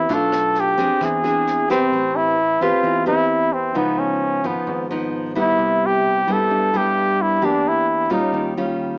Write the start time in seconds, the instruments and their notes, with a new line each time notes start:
Already playing: flugelhorn E4
0.09 fingered electric bass B1, nylon-string guitar B2 A3 D4 F4, kick, snare
0.14 flugelhorn A4
0.32 cross-stick, snare
0.55 snare
0.60 flugelhorn G4
0.78 fingered electric bass F2, nylon-string guitar C4 D4 G#4, kick, snare
1.01 fingered electric bass E2, nylon-string guitar E3, flugelhorn G#4, kick, cross-stick, snare
1.24 nylon-string guitar C4 D4 G#4, snare
1.47 snare
1.69 nylon-string guitar C4 G4 B4, flugelhorn C4, kick, snare
1.92 fingered electric bass A1, nylon-string guitar A3
2.16 flugelhorn E4
2.61 fingered electric bass E2, nylon-string guitar C4 G4 B4, flugelhorn F4
2.83 fingered electric bass E2, nylon-string guitar E3
3.06 nylon-string guitar C4 G4 B4, flugelhorn E4
3.53 flugelhorn C4
3.75 fingered electric bass C#2, nylon-string guitar C#3 F3 B3 D#4, flugelhorn B3
3.99 flugelhorn C#4
4.44 fingered electric bass G#1, nylon-string guitar F3 B3 D#4, flugelhorn B3
4.67 fingered electric bass G#1, nylon-string guitar G#2
4.91 nylon-string guitar F3 B3 D#4
5.35 nylon-string guitar G3 B3 E4
5.41 flugelhorn E4
5.58 fingered electric bass C2, nylon-string guitar C3
5.86 flugelhorn G4
6.28 fingered electric bass G2, nylon-string guitar G3 B3 E4
6.32 flugelhorn A4
6.50 fingered electric bass G2, nylon-string guitar G2
6.74 nylon-string guitar G3 B3 E4, flugelhorn G4
7.22 flugelhorn E4
7.42 fingered electric bass E2, nylon-string guitar E3 A#3 D4 G4, flugelhorn D4
7.68 flugelhorn E4
8.10 fingered electric bass A#2, nylon-string guitar G3 C#4 F4, flugelhorn D#4
8.33 fingered electric bass D#2, nylon-string guitar D#3
8.57 nylon-string guitar G3 C#4 F4